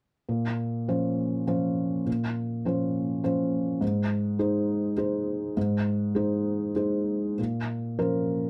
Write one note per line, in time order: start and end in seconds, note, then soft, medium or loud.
0.29 0.87 A#2 soft
0.88 1.44 F3 soft
0.88 1.44 C#4 soft
0.88 1.44 C5 soft
1.47 2.02 F3 soft
1.47 2.02 C#4 soft
1.47 2.03 C5 soft
2.06 2.64 A#2 soft
2.65 3.20 F3 soft
2.65 3.20 C#4 soft
2.65 3.20 C5 soft
3.24 3.77 F3 soft
3.24 3.78 C#4 soft
3.24 3.78 C5 soft
3.81 4.37 G#2 soft
4.39 4.93 G#3 soft
4.39 4.93 D#4 soft
4.39 4.93 C5 soft
4.97 5.52 G#3 soft
4.97 5.52 D#4 soft
4.97 5.52 C5 soft
5.57 6.14 G#2 soft
6.15 6.71 G#3 soft
6.15 6.72 D#4 soft
6.15 6.72 C5 soft
6.76 7.34 G#3 soft
6.76 7.35 D#4 soft
6.76 7.35 C5 soft
7.39 7.97 A#2 soft
7.99 8.50 F3 soft
7.99 8.50 C#4 soft
7.99 8.50 A#4 soft
7.99 8.50 C5 soft